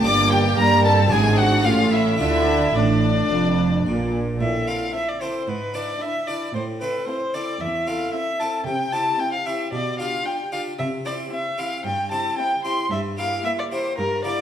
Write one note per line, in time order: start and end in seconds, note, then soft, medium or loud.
0.01 0.57 G1 medium
0.01 0.57 G2 medium
0.01 1.07 A#3 medium
0.01 0.57 A#3 medium
0.01 1.08 D4 medium
0.01 1.08 G4 medium
0.01 0.31 D6 loud
0.01 0.32 D6 loud
0.06 0.55 G2 medium
0.06 0.32 D5 medium
0.32 0.58 G4 medium
0.32 0.40 G5 medium
0.32 0.58 G5 loud
0.58 1.11 G2 medium
0.58 1.11 G3 medium
0.58 1.08 G3 medium
0.58 0.85 A#3 medium
0.58 0.86 A#4 medium
0.58 0.84 A#5 loud
0.58 0.86 A#5 loud
0.85 1.12 C4 medium
0.85 1.12 A4 medium
0.85 1.13 A5 medium
0.85 1.12 A5 medium
1.08 1.66 G#1 medium
1.08 1.62 B3 medium
1.08 1.63 D4 medium
1.08 1.66 D4 medium
1.08 1.64 E4 medium
1.08 1.40 G#5 medium
1.12 1.66 G#2 medium
1.12 1.62 G#2 medium
1.12 1.38 G#4 medium
1.12 1.39 G#5 medium
1.38 1.66 F#4 medium
1.38 1.66 F#5 medium
1.38 1.66 F#5 loud
1.62 2.20 A1 medium
1.62 2.20 A2 medium
1.62 2.15 A3 soft
1.62 2.17 C#4 medium
1.62 2.18 G4 soft
1.62 1.94 F5 medium
1.62 1.93 F5 medium
1.66 2.17 A2 medium
1.66 2.21 C#4 medium
1.66 1.93 F4 medium
1.92 2.18 E4 medium
1.92 2.19 E5 medium
1.92 2.20 E5 medium
2.16 2.74 D2 medium
2.16 2.74 D3 medium
2.16 3.80 A3 medium
2.16 4.35 D4 soft
2.16 2.74 E4 medium
2.16 4.36 F4 medium
2.16 2.74 E5 medium
2.20 2.72 D3 medium
2.20 2.75 D4 medium
2.20 2.77 E5 medium
2.75 3.29 A1 medium
2.75 3.29 A2 medium
2.75 3.27 A2 medium
2.75 4.17 D4 medium
2.75 4.14 D4 medium
2.75 4.13 D5 medium
2.75 4.14 D5 medium
3.30 3.85 F1 medium
3.30 3.85 F2 medium
3.30 3.82 F2 medium
3.85 4.39 A#1 medium
3.85 4.39 A#2 medium
3.85 4.37 A#2 medium
4.40 4.83 A2 medium
4.40 4.83 A2 soft
4.40 4.69 E5 medium
4.67 5.06 C4 soft
4.67 5.06 E4 soft
4.67 5.07 A4 soft
4.67 4.94 F5 medium
4.94 5.34 C4 soft
4.94 5.34 E4 soft
4.94 5.34 A4 soft
4.94 5.10 E5 medium
5.08 5.23 D5 medium
5.21 5.40 C4 soft
5.21 5.41 E4 soft
5.21 5.41 A4 soft
5.21 5.50 C5 medium
5.48 5.90 G#2 medium
5.48 5.89 G#2 soft
5.48 5.76 B4 medium
5.74 6.12 D4 soft
5.74 6.13 E4 soft
5.74 6.13 B4 soft
5.74 6.03 D5 medium
6.01 6.41 D4 soft
6.01 6.40 E4 soft
6.01 6.41 B4 soft
6.01 6.29 E5 medium
6.27 6.47 D4 soft
6.27 6.47 E4 soft
6.27 6.48 B4 soft
6.27 6.54 D5 medium
6.54 6.96 A2 soft
6.54 6.97 A2 medium
6.54 6.63 C5 medium
6.81 7.20 C4 soft
6.81 7.20 E4 soft
6.81 7.20 A4 soft
6.81 7.07 B4 medium
7.07 7.47 C4 soft
7.07 7.47 E4 soft
7.07 7.47 A4 soft
7.07 7.36 C5 medium
7.34 7.53 C4 soft
7.34 7.53 E4 soft
7.34 7.54 A4 soft
7.34 7.62 D5 medium
7.60 8.02 E2 soft
7.60 8.02 E2 medium
7.60 7.89 E5 medium
7.87 8.25 C4 soft
7.87 8.26 E4 soft
7.87 8.26 A4 soft
7.87 8.13 F5 medium
8.13 8.53 C4 soft
8.13 8.53 E4 soft
8.13 8.53 A4 soft
8.13 8.42 E5 medium
8.40 8.59 C4 soft
8.40 8.60 E4 soft
8.40 8.60 A4 soft
8.40 8.65 A5 medium
8.66 9.08 C3 medium
8.66 9.08 C3 soft
8.66 8.94 G5 medium
8.92 9.31 C4 soft
8.92 9.31 E4 soft
8.92 9.32 G4 soft
8.92 9.21 A5 medium
9.19 9.59 C4 soft
9.19 9.59 E4 soft
9.19 9.59 G4 soft
9.19 9.32 G5 medium
9.33 9.47 F5 medium
9.46 9.65 C4 soft
9.46 9.66 E4 soft
9.46 9.66 G4 soft
9.46 9.72 E5 medium
9.72 10.15 B2 medium
9.72 10.14 B2 soft
9.72 9.98 D5 medium
9.99 10.38 D4 soft
9.99 10.38 F4 soft
9.99 10.38 G4 soft
9.99 10.27 F5 medium
10.26 10.66 D4 soft
10.26 10.66 F4 soft
10.26 10.66 G4 soft
10.26 10.52 G5 medium
10.52 10.71 D4 soft
10.52 10.72 F4 soft
10.52 10.72 G4 soft
10.52 10.60 F5 medium
10.79 11.20 C3 soft
10.79 11.21 C3 medium
10.79 10.87 E5 medium
11.05 11.44 C4 soft
11.05 11.44 E4 soft
11.05 11.44 G4 soft
11.05 11.14 D5 medium
11.32 11.72 C4 soft
11.32 11.71 E4 soft
11.32 11.72 G4 soft
11.32 11.61 E5 medium
11.58 11.77 C4 soft
11.58 11.78 E4 soft
11.58 11.78 G4 soft
11.58 11.85 F5 medium
11.85 12.26 G2 soft
11.85 12.27 G2 medium
11.85 12.11 G5 medium
12.11 12.50 C4 soft
12.11 12.50 E4 soft
12.11 12.50 G4 soft
12.11 12.38 A5 medium
12.38 12.78 C4 medium
12.38 12.78 E4 medium
12.38 12.78 G4 soft
12.38 12.64 G5 medium
12.65 12.84 C4 soft
12.65 12.84 E4 soft
12.65 12.84 G4 soft
12.65 12.91 C6 medium
12.91 13.34 G2 medium
12.91 13.33 G2 soft
12.91 12.99 E5 medium
13.18 13.56 A#3 soft
13.18 13.57 E4 soft
13.18 13.57 G4 soft
13.18 13.44 F5 medium
13.45 13.84 A#3 soft
13.45 13.84 E4 medium
13.45 13.85 G4 medium
13.45 13.50 E5 medium
13.59 13.64 D5 medium
13.71 13.91 A#3 soft
13.71 13.91 E4 soft
13.71 13.91 G4 soft
13.71 13.98 C5 medium
13.98 14.40 G2 medium
13.98 14.39 G2 soft
13.98 14.24 A#4 medium
14.24 14.41 A#3 soft
14.24 14.41 E4 soft
14.24 14.41 G4 soft
14.24 14.41 D5 medium